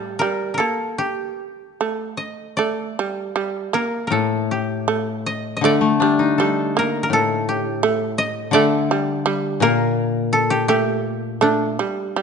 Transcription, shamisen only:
Already playing: G3
0.21 G3
0.60 A#3
1.81 A3
2.59 A3
2.99 G3
3.36 G3
3.73 A#3
4.88 A3
5.64 A3
6.02 G3
6.40 G3
6.77 A#3
7.83 A3
8.54 A3
8.91 G3
9.26 G3
9.63 A#3
10.69 A3
11.41 A3
11.79 G3
12.16 G3

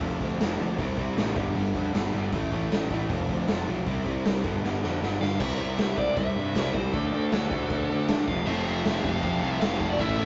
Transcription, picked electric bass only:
0.01 F1
0.21 D2
0.40 F1
0.60 D2
0.78 C2
0.98 C2
1.18 A1
1.36 G1
1.56 G1
1.75 F2
1.94 G1
2.13 G1
2.33 A1
2.52 A1
2.71 A1
2.90 A1
3.10 F1
3.29 D2
3.49 F1
3.68 B1
3.87 C2
4.06 C2
4.26 C2
4.44 G1
4.64 G1
4.84 F2
5.02 G1
5.21 G1
5.40 C2
5.79 C2
5.98 C2
6.17 C2
6.36 G2
6.55 C2
6.75 C2
6.94 D2
7.13 D2
7.32 D2
7.51 D2
7.70 D2
7.90 D2
8.09 D3
8.28 F1
8.47 F1
8.85 F1
9.04 F1
9.23 F1
9.42 C2
9.62 F1
9.80 F1
9.99 A1
10.19 A1

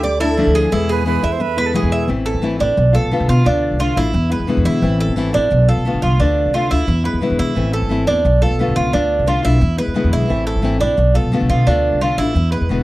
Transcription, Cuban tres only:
0.03 D5
0.20 E4
0.55 G#4
0.72 E4
0.89 G#4
1.24 E5
1.58 B4
1.75 G#4
1.92 E5
2.26 A4
2.60 D4
2.95 A4
3.29 F4
3.46 D4
3.80 F4
3.97 E4
4.32 B4
4.65 E4
5.00 A4
5.34 D4
5.68 A4
6.02 F4
6.20 D4
6.54 F4
6.71 E4
7.05 B4
7.39 E4
7.73 A4
8.07 D4
8.42 A4
8.76 F4
8.93 D4
9.28 F4
9.45 E4
9.78 B4
10.13 E4
10.47 A4
10.80 D4
11.15 A4
11.50 F4
11.67 D4
12.01 F4
12.18 E4
12.52 B4

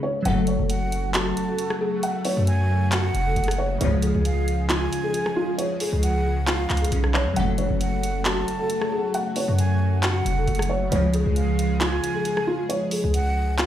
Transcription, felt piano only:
0.03 C#5
0.26 F#5
0.48 C#5
1.14 F#4
1.48 A4
1.81 G#4
2.03 F#5
2.25 C#5
2.92 F#4
3.26 A4
3.58 C#5
3.81 C#5
4.03 G#4
4.69 F4
5.04 G#4
5.36 F4
5.58 C#5
5.81 G#4
6.48 F4
6.82 G#4
7.14 C#5
7.37 F#5
7.58 C#5
8.25 F#4
8.59 A4
8.92 G#4
9.14 F#5
9.37 C#5
10.03 F#4
10.38 A4
10.70 C#5
10.92 C#5
11.14 G#4
11.81 F4
12.15 G#4
12.47 F4
12.69 C#5
12.92 G#4
13.59 F4

